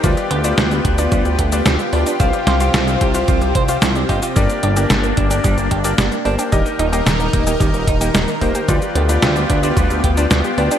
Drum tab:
HH |xxxxxxxxxxxxxxox|xxxxxxxxxxxxxxox|xxxxxxxxxxxxxxox|xxxxxxxxxxxxxxox|
SH |xx-xxx-xxx-xxx-x|xx-xxx-xxx-xxx-x|xx-xxx-xxx-xxx-x|xx-xxx-xxx-xxx-x|
SD |----o-------o---|--o-o-------o---|----o-------o---|----o-------o---|
BD |o-----o-o-o-----|o-----o-o-o---o-|o-----o-o-o-----|o-----o-o-o---o-|

HH |xxxxxxxxxxxxxxox|
SH |xx-xxx-xxx-xxx-x|
SD |----o-------o---|
BD |o-----o-o-o-----|